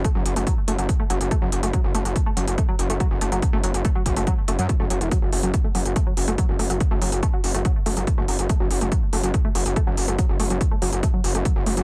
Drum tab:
HH |x-xxx-xxx-xxx-xx|x-xxx-xxx-xxx-xx|x-xxx-xxx-xxx-xx|x-oxx-oxx-oxx-ox|
BD |o---o---o---o---|o---o---o---o---|o---o-o-o---o---|o---o---o---o---|

HH |x-oxx-oxx-oxx-ox|x-oxx-oxx-oxx-ox|x-oxx-oxx-oxx-ox|
BD |o---o---o---o---|o---o---o---o---|o---o---o---o---|